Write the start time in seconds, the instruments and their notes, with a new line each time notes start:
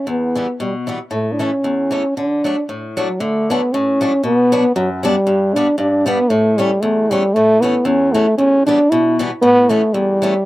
0.07 steel-string acoustic guitar E2, french horn B3
0.35 steel-string acoustic guitar E3 G3 B3
0.60 steel-string acoustic guitar B2, french horn G3
0.87 steel-string acoustic guitar E3 G3 B3
1.11 steel-string acoustic guitar A2, french horn A3
1.32 french horn D4
1.39 steel-string acoustic guitar E3 A3 C#4, french horn C#4
1.64 steel-string acoustic guitar E2
1.91 steel-string acoustic guitar E3 A3 C#4
2.17 steel-string acoustic guitar D3, french horn D4
2.44 steel-string acoustic guitar F#3 A3 D4
2.69 steel-string acoustic guitar A2
2.97 steel-string acoustic guitar F#3 A3 D4, french horn F#3
3.20 steel-string acoustic guitar D3, french horn A3
3.50 steel-string acoustic guitar F#3 A3 D4, french horn B3
3.73 steel-string acoustic guitar A2, french horn C#4
4.01 steel-string acoustic guitar F#3 A3 D4
4.23 steel-string acoustic guitar B2, french horn B3
4.52 steel-string acoustic guitar F#3 B3 D4
4.76 steel-string acoustic guitar F#2, french horn F#3
5.03 steel-string acoustic guitar F#3 B3 D4, french horn G3
5.27 steel-string acoustic guitar G2
5.54 steel-string acoustic guitar G3 B3 D4, french horn D4
5.78 steel-string acoustic guitar G2, french horn D4
6.06 steel-string acoustic guitar G3 B3 D4, french horn B3
6.30 steel-string acoustic guitar A2, french horn A3
6.58 steel-string acoustic guitar E3 A3 C#4, french horn G3
6.81 steel-string acoustic guitar E2, french horn A3
7.10 steel-string acoustic guitar E3 A3 C#4, french horn G3
7.34 steel-string acoustic guitar A2, french horn A3
7.61 steel-string acoustic guitar E3 A3 C#4, french horn B3
7.85 steel-string acoustic guitar E2, french horn C#4
8.13 steel-string acoustic guitar E3 A3 C#4, french horn A3
8.38 steel-string acoustic guitar E2, french horn C#4
8.67 steel-string acoustic guitar E3 G3 B3, french horn D4
8.90 steel-string acoustic guitar B2, french horn E4
9.19 steel-string acoustic guitar E3 G3 B3
9.42 steel-string acoustic guitar A2, french horn B3
9.69 steel-string acoustic guitar E3 A3 C#4, french horn A3
9.93 steel-string acoustic guitar E2, french horn G3
10.22 steel-string acoustic guitar E3 A3 C#4